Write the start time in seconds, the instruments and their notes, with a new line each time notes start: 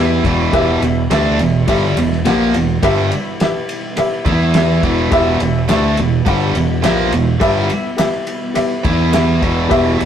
Already playing: fingered electric bass E2, overdriven electric guitar E3 B3 E4, string machine G3 B3 E4 B4, upright piano G4 B4 G5
0.24 fingered electric bass E1, overdriven electric guitar E2 B2 E3, kick, ride
0.52 fingered electric bass E1, overdriven electric guitar E2 B2 E3, string machine G3 B3 E4, upright piano G4 B4 E5, kick, ride
0.82 fingered electric bass E1, overdriven electric guitar E2 B2, ride
1.10 fingered electric bass D2, overdriven electric guitar D3 A3 D4, upright piano G4 B4 E5, snare, ride
1.39 fingered electric bass E1, overdriven electric guitar E2 B2, ride
1.67 fingered electric bass G1, overdriven electric guitar G2 D3 G3, upright piano G4 B4 E5, kick, ride
1.97 fingered electric bass E1, overdriven electric guitar E2 B2, ride
2.12 snare
2.25 fingered electric bass A#1, overdriven electric guitar A#2 F3 A#3, upright piano G4 B4 F#5, snare, ride
2.54 fingered electric bass E1, overdriven electric guitar E2 B2, ride
2.82 fingered electric bass G1, overdriven electric guitar G2 D3 G3, string machine G3 B3 E4 B4, upright piano G4 B4 E5, kick, ride
3.12 ride
3.40 upright piano G4 B4 E5, snare, ride
3.69 ride
3.97 upright piano G4 B4 E5, muted distorted electric guitar stroke, muted fingered electric bass stroke, muted overdriven electric guitar stroke, ride
4.26 fingered electric bass E2, overdriven electric guitar E3 B3 E4, kick, ride
4.54 upright piano G4 B4 E5, snare, ride
4.83 fingered electric bass E1, overdriven electric guitar E2 B2 E3, kick, ride
5.11 fingered electric bass E1, overdriven electric guitar E2 B2 E3, string machine B3 E4 G4 B4, upright piano G4 B4 E5, kick, ride
5.40 fingered electric bass E1, overdriven electric guitar E2 B2, ride
5.68 fingered electric bass D2, overdriven electric guitar D3 A3 D4, upright piano G4 B4 E5, snare, clap, ride
5.97 fingered electric bass E1, overdriven electric guitar E2 B2, ride
6.26 fingered electric bass G1, overdriven electric guitar G2 D3 G3, upright piano G4 B4 F#5, kick, ride
6.55 fingered electric bass E1, overdriven electric guitar E2 B2, ride
6.83 fingered electric bass A#1, overdriven electric guitar A#2 F3 A#3, upright piano G4 B4 E5, snare, clap, ride
7.12 fingered electric bass E1, overdriven electric guitar E2 B2, ride
7.40 fingered electric bass G1, overdriven electric guitar G2 D3 G3, string machine G3 B3 E4 B4, upright piano G4 B4 E5, kick, ride
7.70 ride
7.97 upright piano G4 B4 E5, snare, clap, ride
8.27 ride
8.54 upright piano G4 B4 E5, muted fingered electric bass stroke, muted distorted electric guitar stroke, muted overdriven electric guitar stroke, ride
8.85 fingered electric bass E2, overdriven electric guitar E3 B3 E4, kick, ride
9.12 upright piano G4 B4 E5, snare, clap, ride
9.42 fingered electric bass E1, overdriven electric guitar E2 B2 E3, kick, ride
9.69 fingered electric bass E1, overdriven electric guitar E2 B2 E3, string machine G3 B3 E4, upright piano G4 B4 E5, kick, ride
9.99 fingered electric bass E1, overdriven electric guitar E2 B2, ride